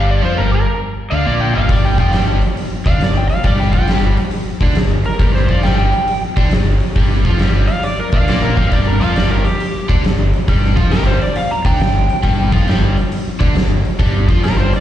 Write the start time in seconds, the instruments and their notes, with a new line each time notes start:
Already playing: fingered electric bass G1, overdriven electric guitar G2 G3
0.11 electric slide guitar D5
0.21 fingered electric bass F2, overdriven electric guitar F3 F4, electric slide guitar C5
0.36 fingered electric bass G1, overdriven electric guitar G2 G3, electric slide guitar A#4
0.54 electric slide guitar A#4
1.10 fingered electric bass D2, overdriven electric guitar D3 D4, electric slide guitar F5
1.25 fingered electric bass A#1, overdriven electric guitar A#2 A#3, electric slide guitar D5
1.41 electric slide guitar G5
1.54 fingered electric bass G1, overdriven electric guitar G2 G3, electric slide guitar F5
1.69 fingered electric bass G1, overdriven electric guitar G2 G3, electric slide guitar D5, kick, open hi-hat
1.85 electric slide guitar G5
1.98 fingered electric bass F2, overdriven electric guitar F3 F4, electric slide guitar G5, kick, open hi-hat
2.13 fingered electric bass G1, overdriven electric guitar G2 G3, snare, open hi-hat
2.42 open hi-hat
2.57 open hi-hat
2.86 fingered electric bass D2, overdriven electric guitar D3 D4, electric slide guitar F5, kick, open hi-hat
3.00 fingered electric bass G1, overdriven electric guitar G2, electric slide guitar D5, snare, open hi-hat
3.17 electric slide guitar G5
3.29 electric slide guitar F5, open hi-hat
3.44 fingered electric bass G1, overdriven electric guitar G2 G3, electric slide guitar D5, kick, open hi-hat
3.60 electric slide guitar G5, snare
3.73 fingered electric bass F2, overdriven electric guitar F3 F4, electric slide guitar G5, kick, open hi-hat
3.88 fingered electric bass G1, overdriven electric guitar G2 G3, snare, open hi-hat
4.17 open hi-hat
4.31 open hi-hat
4.61 fingered electric bass D2, overdriven electric guitar D3 D4, kick, open hi-hat
4.70 snare
4.75 fingered electric bass G1, overdriven electric guitar G2, snare, open hi-hat
5.04 electric slide guitar A#4, open hi-hat
5.20 fingered electric bass G1, overdriven electric guitar G2 G3, kick, open hi-hat
5.35 electric slide guitar C5, snare
5.49 fingered electric bass F2, overdriven electric guitar F3 F4, electric slide guitar D5, kick, open hi-hat
5.63 fingered electric bass G1, overdriven electric guitar G2 G3, electric slide guitar G5, snare, open hi-hat
5.78 electric slide guitar G5
5.92 open hi-hat
6.08 open hi-hat
6.37 fingered electric bass D2, overdriven electric guitar D3 D4, kick, open hi-hat
6.46 snare
6.51 fingered electric bass G1, overdriven electric guitar G2, snare, open hi-hat
6.80 open hi-hat
6.96 fingered electric bass G1, overdriven electric guitar G2 G3, kick, open hi-hat
7.12 snare
7.25 fingered electric bass F2, overdriven electric guitar F3 F4, kick, open hi-hat
7.39 fingered electric bass G1, overdriven electric guitar G2 G3, snare, open hi-hat
7.68 electric slide guitar F5, open hi-hat
7.83 electric slide guitar D5, open hi-hat
7.99 electric slide guitar A#4
8.12 fingered electric bass D2, overdriven electric guitar D3 D4, electric slide guitar F5, kick, open hi-hat
8.28 fingered electric bass A#1, overdriven electric guitar A#2 A#3, electric slide guitar D5, snare, open hi-hat
8.42 electric slide guitar A#4
8.57 fingered electric bass G1, overdriven electric guitar G2 G3, electric slide guitar F5, kick, open hi-hat
8.71 fingered electric bass G1, overdriven electric guitar G2 G3, electric slide guitar D5, kick, open hi-hat
8.87 electric slide guitar A#4
9.00 fingered electric bass F2, overdriven electric guitar F3 F4, electric slide guitar F5, open hi-hat
9.16 fingered electric bass G1, overdriven electric guitar G2 G3, electric slide guitar D5, snare, open hi-hat
9.31 electric slide guitar A#4
9.45 electric slide guitar G4, open hi-hat
9.60 open hi-hat
9.89 fingered electric bass D2, overdriven electric guitar D3 D4, kick, open hi-hat
10.04 fingered electric bass G1, overdriven electric guitar G2, snare, open hi-hat
10.33 open hi-hat
10.48 fingered electric bass G1, overdriven electric guitar G2 G3, kick, open hi-hat
10.65 snare
10.76 fingered electric bass F2, overdriven electric guitar F3 F4, kick, open hi-hat
10.91 fingered electric bass G1, overdriven electric guitar G2 G3, electric slide guitar A#4, snare, open hi-hat
11.07 electric slide guitar C5
11.22 electric slide guitar D5, open hi-hat
11.36 electric slide guitar F5, open hi-hat
11.51 electric slide guitar A#5
11.65 fingered electric bass D2, overdriven electric guitar D3 D4, electric slide guitar G5, kick, open hi-hat
11.74 snare
11.80 fingered electric bass G1, overdriven electric guitar G2, snare, open hi-hat
12.10 open hi-hat
12.23 fingered electric bass G1, overdriven electric guitar G2 G3, kick, open hi-hat
12.52 fingered electric bass F2, overdriven electric guitar F3 F4, kick, open hi-hat
12.67 fingered electric bass G1, overdriven electric guitar G2 G3, snare, open hi-hat
12.97 open hi-hat
13.12 open hi-hat
13.39 fingered electric bass D2, overdriven electric guitar D3 D4, kick, open hi-hat
13.55 fingered electric bass G1, overdriven electric guitar G2, snare, open hi-hat
13.85 open hi-hat
13.99 fingered electric bass G1, overdriven electric guitar G2 G3, kick, open hi-hat
14.28 fingered electric bass F2, overdriven electric guitar F3 F4, kick, open hi-hat
14.42 fingered electric bass G1, overdriven electric guitar G2 G3, electric slide guitar A#4, snare, open hi-hat
14.60 electric slide guitar C5
14.73 electric slide guitar D5, open hi-hat